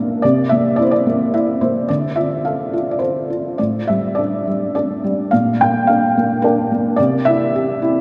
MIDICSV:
0, 0, Header, 1, 2, 480
1, 0, Start_track
1, 0, Key_signature, -1, "minor"
1, 0, Tempo, 550964
1, 206, Time_signature, 3, 2, 24, 8
1, 2125, Tempo, 577478
1, 4045, Tempo, 557621
1, 6850, End_track
2, 0, Start_track
2, 0, Title_t, "Felt piano"
2, 0, Program_c, 0, 0
2, 0, Control_c, 0, 64, 127
2, 0, Note_on_c, 0, 46, 50
2, 0, Note_on_c, 0, 58, 38
2, 0, Note_on_c, 0, 62, 42
2, 0, Note_on_c, 0, 70, 55
2, 0, Note_on_c, 0, 74, 60
2, 0, Note_on_c, 0, 76, 55
2, 0, Note_on_c, 0, 77, 64
2, 176, Note_off_c, 0, 46, 0
2, 194, Note_off_c, 0, 74, 0
2, 194, Note_on_c, 0, 74, 72
2, 196, Note_off_c, 0, 62, 0
2, 200, Note_off_c, 0, 58, 0
2, 212, Note_on_c, 0, 48, 59
2, 213, Note_off_c, 0, 70, 0
2, 217, Note_off_c, 0, 77, 0
2, 217, Control_c, 0, 64, 0
2, 220, Note_off_c, 0, 76, 0
2, 367, Control_c, 0, 64, 127
2, 430, Note_on_c, 0, 76, 68
2, 446, Note_off_c, 0, 74, 0
2, 452, Note_on_c, 0, 58, 41
2, 664, Note_on_c, 0, 74, 62
2, 681, Note_off_c, 0, 76, 0
2, 688, Note_on_c, 0, 64, 40
2, 716, Note_on_c, 0, 72, 47
2, 726, Note_off_c, 0, 74, 0
2, 785, Note_off_c, 0, 72, 0
2, 796, Note_on_c, 0, 74, 65
2, 915, Note_off_c, 0, 58, 0
2, 928, Note_on_c, 0, 58, 46
2, 1138, Note_off_c, 0, 74, 0
2, 1150, Note_off_c, 0, 64, 0
2, 1163, Note_on_c, 0, 64, 43
2, 1166, Note_on_c, 0, 76, 58
2, 1391, Note_off_c, 0, 76, 0
2, 1397, Note_off_c, 0, 58, 0
2, 1404, Note_on_c, 0, 72, 52
2, 1410, Note_on_c, 0, 58, 34
2, 1615, Note_off_c, 0, 48, 0
2, 1632, Note_off_c, 0, 64, 0
2, 1641, Note_off_c, 0, 58, 0
2, 1642, Note_on_c, 0, 74, 60
2, 1652, Note_off_c, 0, 72, 0
2, 1654, Note_on_c, 0, 50, 46
2, 1659, Control_c, 0, 64, 0
2, 1792, Control_c, 0, 64, 127
2, 1879, Note_on_c, 0, 76, 58
2, 1888, Note_on_c, 0, 65, 35
2, 1890, Note_off_c, 0, 74, 0
2, 2129, Note_off_c, 0, 76, 0
2, 2132, Note_on_c, 0, 77, 49
2, 2134, Note_on_c, 0, 69, 37
2, 2357, Note_off_c, 0, 65, 0
2, 2369, Note_on_c, 0, 65, 33
2, 2518, Note_on_c, 0, 74, 37
2, 2553, Note_off_c, 0, 77, 0
2, 2582, Note_on_c, 0, 72, 50
2, 2586, Note_off_c, 0, 74, 0
2, 2593, Note_off_c, 0, 69, 0
2, 2605, Note_on_c, 0, 69, 31
2, 2830, Note_off_c, 0, 65, 0
2, 2842, Note_on_c, 0, 65, 26
2, 3049, Note_off_c, 0, 50, 0
2, 3070, Note_off_c, 0, 69, 0
2, 3074, Note_on_c, 0, 74, 56
2, 3075, Note_off_c, 0, 65, 0
2, 3084, Note_on_c, 0, 45, 42
2, 3087, Note_off_c, 0, 72, 0
2, 3090, Control_c, 0, 64, 0
2, 3235, Control_c, 0, 64, 127
2, 3319, Note_on_c, 0, 76, 60
2, 3328, Note_off_c, 0, 74, 0
2, 3335, Note_on_c, 0, 55, 33
2, 3546, Note_on_c, 0, 74, 58
2, 3573, Note_off_c, 0, 76, 0
2, 3579, Note_on_c, 0, 62, 37
2, 3804, Note_off_c, 0, 55, 0
2, 3816, Note_on_c, 0, 55, 37
2, 4033, Note_off_c, 0, 74, 0
2, 4039, Note_off_c, 0, 62, 0
2, 4045, Note_on_c, 0, 74, 59
2, 4052, Note_on_c, 0, 62, 41
2, 4284, Note_off_c, 0, 55, 0
2, 4297, Note_on_c, 0, 55, 36
2, 4499, Note_off_c, 0, 45, 0
2, 4520, Note_off_c, 0, 62, 0
2, 4528, Note_on_c, 0, 77, 69
2, 4529, Note_off_c, 0, 55, 0
2, 4543, Control_c, 0, 64, 0
2, 4545, Note_on_c, 0, 46, 47
2, 4546, Note_off_c, 0, 74, 0
2, 4706, Control_c, 0, 64, 127
2, 4782, Note_off_c, 0, 77, 0
2, 4785, Note_on_c, 0, 79, 74
2, 4789, Note_on_c, 0, 58, 37
2, 5012, Note_on_c, 0, 77, 67
2, 5028, Note_on_c, 0, 62, 43
2, 5029, Note_off_c, 0, 79, 0
2, 5259, Note_off_c, 0, 58, 0
2, 5272, Note_on_c, 0, 58, 44
2, 5456, Note_off_c, 0, 77, 0
2, 5483, Note_on_c, 0, 70, 68
2, 5491, Note_off_c, 0, 62, 0
2, 5504, Note_on_c, 0, 62, 50
2, 5726, Note_off_c, 0, 58, 0
2, 5739, Note_on_c, 0, 58, 36
2, 5937, Note_off_c, 0, 46, 0
2, 5952, Note_on_c, 0, 74, 78
2, 5957, Note_off_c, 0, 62, 0
2, 5964, Note_off_c, 0, 58, 0
2, 5975, Note_off_c, 0, 70, 0
2, 5976, Control_c, 0, 64, 0
2, 5981, Note_on_c, 0, 48, 53
2, 6119, Control_c, 0, 64, 127
2, 6199, Note_on_c, 0, 76, 86
2, 6204, Note_off_c, 0, 74, 0
2, 6221, Note_on_c, 0, 64, 44
2, 6460, Note_on_c, 0, 67, 51
2, 6676, Note_off_c, 0, 64, 0
2, 6689, Note_on_c, 0, 64, 49
2, 6850, Note_off_c, 0, 48, 0
2, 6850, Note_off_c, 0, 64, 0
2, 6850, Note_off_c, 0, 67, 0
2, 6850, Note_off_c, 0, 76, 0
2, 6850, End_track
0, 0, End_of_file